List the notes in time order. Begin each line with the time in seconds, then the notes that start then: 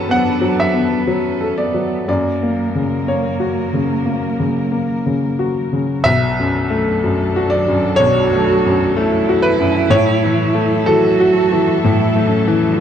Already playing: F#2 F#3 B3 C#4 A4 B4 A5 B5
0.09 B3 D4 F#5
0.41 F#3
0.60 E5
0.73 B3
1.07 F#3 C#4
1.41 A4
1.58 B3 D5
1.74 F#3
2.07 F#2 F#3 A#3 A#4 D5
2.43 A#3
2.75 C#3
3.08 A#3 C#5
3.40 F#4
3.73 C#3
4.06 A#3
4.40 C#3
4.72 A#3
5.06 C#3
5.39 F#4
5.73 C#3
6.04 B1 F#3 D4 A4 E5
6.40 F#2
6.70 A3
7.04 F#2
7.36 F#4
7.50 D5
7.68 F#2
7.96 B1 F#4 C#5
8.33 A3
8.65 F#2
8.95 A3 E4
9.29 F#4
9.42 B4
9.59 F#2
9.90 A2 F#3 A4 C#5 E5
10.24 E3
10.55 A3
10.86 E3 F#4 A4
11.20 F#4
11.52 E3
11.83 A2 E4
12.16 A3
12.29 C#4
12.48 E3
12.77 F#4